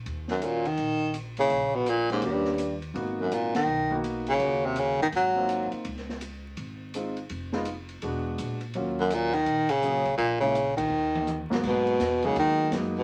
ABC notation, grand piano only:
X:1
M:4/4
L:1/8
Q:"Swing" 1/4=166
K:Ebm
V:1 name="Grand piano"
z2 [DFGB] z4 [B,D_FA] | z3 [B,DF=G]3 z2 | [B,CEG]3 z2 [B,CEG]3 | [B,DFG]3 z2 [B,=CEF]3 |
z6 [A,=CEF] z | z [A,CEF] z2 [^G,=B,=D^F]3 z | [G,B,DF]3 z3 [G,B,DA] z | z [A,B,D_F] z4 z [A,,G,B,CG]- |
[K:G#m] [_A,,_G,_B,_C_G]2 z [F,^G,^A,=B,D]3 [F,G,A,B,D]2 |]